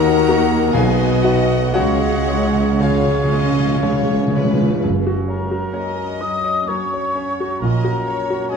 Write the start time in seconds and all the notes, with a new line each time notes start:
Already playing: D#2 D#3 A#3 D#4 F#4 A#4 D#5 F#5 A#5
0.28 A#3 F#4 A#4
0.72 B1 B2 B3 F#4 D#5 F5 G#5
0.77 G#4 B4 G#5
1.22 B3 F#4 D#5 F#5
1.73 C#2 C#3 G#3 C#4 F#4 G#4 C#5 D#5 F#5
1.93 C#3
2.11 C#3
2.20 C#3
2.29 C#3 G#3 C#4 C#5
2.38 C#3
2.46 C#3
2.56 C#3
2.64 C#3
2.73 C#3
2.79 C#2 C#3 G#3 C#4 F4 G#4 C#5 F5
2.90 C#3
2.98 C#3
3.07 C#3
3.16 C#3
3.25 C#3
3.31 C#3 G#3 C#4 C#5 D#5
3.41 C#3
3.51 C#3
3.59 C#3
3.67 C#3
3.76 C#3
3.82 C#2 C#3 C#5
3.93 C#3
4.02 C#3
4.10 C#3
4.19 C#3
4.27 C#3
4.35 C#3 G#3 C#4 B4 C#5
4.45 C#3
4.54 C#3
4.62 C#3
4.71 C#3
4.84 F#1 F#2 F#3 C#4
5.07 F#4
5.28 A#4 C#5 A#5
5.51 F#4
5.74 A#3 C#4 A#4 C#5 D#5
5.96 C#4
6.21 F#3 D#5 D#6
6.44 C#5
6.68 F#3 A#3 C#4 A#4 C#5 C#6
6.93 C#5
7.15 C#4
7.40 F#4
7.59 A#1 A#2 A#4 D#5 A#5
7.63 A#2
7.84 F#4
8.06 C#5
8.30 F#4
8.48 A#3 C#4 F#4 G#4 D#5 G#5
8.53 C#5